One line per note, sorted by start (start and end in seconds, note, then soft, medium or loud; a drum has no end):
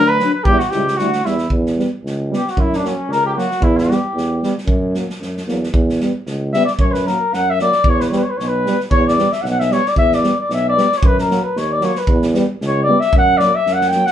0.00 0.22 D2 medium
0.07 0.31 B4 medium
0.07 0.33 B4 loud
0.19 0.30 F#3 medium
0.19 0.32 D4 medium
0.19 snare soft
0.32 0.45 B4 medium
0.32 0.46 B4 medium
0.44 0.61 E2 medium
0.44 0.57 G3 medium
0.44 0.59 G4 loud
0.44 0.60 G4 loud
0.44 kick loud
0.49 0.59 E4 medium
0.58 0.72 F#4 medium
0.58 0.71 F#4 medium
0.58 snare soft
0.70 0.96 C#2 medium
0.70 0.84 G3 medium
0.70 0.84 E4 medium
0.70 0.98 G4 medium
0.70 snare soft
0.88 snare soft
0.97 1.22 D2 medium
0.97 1.09 G3 medium
0.97 1.11 E4 medium
0.97 1.27 F#4 medium
0.97 1.26 F#4 medium
0.97 snare soft
1.13 snare soft
1.25 1.49 E2 medium
1.25 1.35 G3 medium
1.25 1.51 E4 medium
1.25 1.36 E4 medium
1.25 1.52 E4 medium
1.25 snare soft
1.38 snare soft
1.50 1.80 E2 loud
1.50 kick medium
1.66 snare soft
1.77 1.88 G3 medium
1.77 1.89 B3 medium
1.77 snare soft
2.04 2.33 C#2 medium
2.04 snare soft
2.30 2.41 G3 medium
2.30 2.43 B3 medium
2.30 snare soft
2.35 2.51 G4 medium
2.48 2.62 F#4 medium
2.48 snare soft
2.57 2.86 F#2 loud
2.57 2.77 E4 medium
2.57 kick medium
2.73 2.88 D4 medium
2.73 snare soft
2.83 2.94 F#3 medium
2.83 2.94 A#3 medium
2.83 3.13 C#4 medium
2.83 snare soft
3.08 3.38 C#2 medium
3.08 3.25 A#4 loud
3.12 snare soft
3.26 3.28 G4 loud
3.33 3.47 F#3 medium
3.33 3.47 A#3 medium
3.33 3.65 F#4 loud
3.33 3.37 G4 medium
3.39 snare soft
3.51 snare soft
3.61 3.90 E2 loud
3.61 3.79 E4 loud
3.61 kick loud
3.77 4.56 G4 medium
3.77 snare soft
3.89 4.00 G3 medium
3.89 4.00 B3 medium
3.89 snare soft
4.14 4.43 E2 medium
4.14 snare soft
4.42 4.54 G3 medium
4.42 4.53 B3 medium
4.42 snare soft
4.58 snare soft
4.66 4.96 F#2 loud
4.66 kick medium
4.95 5.05 F#3 medium
4.95 5.06 A#3 medium
4.95 snare soft
5.10 snare soft
5.20 5.45 F#2 medium
5.20 snare soft
5.37 snare soft
5.47 5.71 E2 medium
5.47 5.59 F#3 medium
5.47 5.57 A#3 medium
5.47 snare soft
5.63 snare soft
5.72 6.02 E2 loud
5.72 kick medium
5.90 snare soft
6.01 6.11 G3 medium
6.01 6.12 B3 medium
6.01 snare soft
6.26 6.56 C#2 medium
6.26 snare soft
6.53 6.64 G3 medium
6.53 6.65 B3 medium
6.53 6.65 E5 loud
6.53 snare soft
6.65 6.71 D5 medium
6.65 snare soft
6.79 7.08 F#2 loud
6.79 6.94 C#5 medium
6.79 kick medium
6.92 7.08 B4 medium
6.92 snare soft
7.06 7.17 F#3 medium
7.06 7.19 A#3 medium
7.06 7.36 A#4 medium
7.06 snare soft
7.33 7.62 F#2 medium
7.33 7.52 F#5 loud
7.33 snare soft
7.50 7.61 E5 loud
7.59 7.70 F#3 medium
7.59 7.71 A#3 medium
7.59 7.91 D5 loud
7.59 snare soft
7.72 snare soft
7.84 8.14 E2 medium
7.84 kick loud
7.89 8.02 C#5 loud
8.01 8.10 B4 medium
8.01 snare soft
8.08 8.22 G3 medium
8.08 8.19 C#5 medium
8.12 8.23 B3 medium
8.12 snare soft
8.17 8.24 B4 medium
8.23 8.31 C#5 medium
8.30 8.39 B4 medium
8.37 8.68 B1 medium
8.37 8.49 C#5 medium
8.37 snare soft
8.48 8.79 B4 medium
8.66 8.76 G3 medium
8.66 8.76 B3 medium
8.66 snare soft
8.80 snare soft
8.91 9.20 E2 loud
8.91 9.04 C#5 loud
8.91 kick medium
9.07 9.34 D5 medium
9.07 snare soft
9.17 9.28 G3 medium
9.17 9.28 B3 medium
9.17 snare soft
9.32 9.43 E5 medium
9.32 snare soft
9.42 9.73 B1 loud
9.42 9.44 F#5 medium
9.42 snare soft
9.51 9.61 F#5 medium
9.60 9.74 E5 medium
9.60 snare soft
9.70 9.81 G3 medium
9.70 9.82 B3 medium
9.70 9.89 C#5 loud
9.70 snare soft
9.86 9.98 D5 medium
9.86 snare soft
9.95 10.25 E2 medium
9.95 10.16 E5 loud
9.95 kick medium
10.12 10.39 D5 medium
10.12 snare soft
10.22 10.33 G3 medium
10.22 10.34 B3 medium
10.22 snare soft
10.40 10.55 D5 medium
10.49 10.78 B1 medium
10.49 snare soft
10.54 10.66 E5 loud
10.69 10.99 D5 loud
10.76 10.87 G3 medium
10.76 10.87 B3 medium
10.76 snare soft
10.92 snare soft
10.97 11.07 C#5 medium
11.03 11.32 F#2 loud
11.03 11.19 B4 loud
11.03 kick loud
11.18 11.45 A#4 medium
11.18 snare soft
11.30 11.40 F#3 medium
11.30 11.40 A#3 medium
11.30 snare soft
11.43 11.59 B4 medium
11.56 11.85 D#2 medium
11.56 11.73 C#5 medium
11.56 snare soft
11.71 11.85 D5 medium
11.81 11.92 F#3 medium
11.81 11.93 A#3 medium
11.81 11.99 C#5 medium
11.81 snare soft
11.95 12.24 B4 medium
11.95 snare soft
12.07 12.37 E2 loud
12.07 kick medium
12.22 snare soft
12.34 12.45 G3 medium
12.34 12.46 B3 medium
12.34 snare soft
12.61 12.91 C#2 loud
12.61 snare soft
12.67 12.81 C#5 medium
12.83 12.98 G3 medium
12.83 13.02 D5 loud
12.88 12.99 B3 medium
13.00 13.16 E5 loud
13.00 snare soft
13.13 13.43 F#2 loud
13.13 kick loud
13.18 13.39 F#5 loud
13.38 13.51 F#3 medium
13.38 13.57 D5 loud
13.38 snare soft
13.42 13.52 A#3 medium
13.55 13.74 E5 medium
13.66 13.96 F#2 medium
13.66 snare soft
13.73 13.89 F#5 loud
13.81 snare soft
13.88 14.07 G5 loud
13.88 snare soft
13.94 14.05 F#3 medium
13.94 14.06 A#3 medium
14.06 14.12 F#5 loud
14.06 snare soft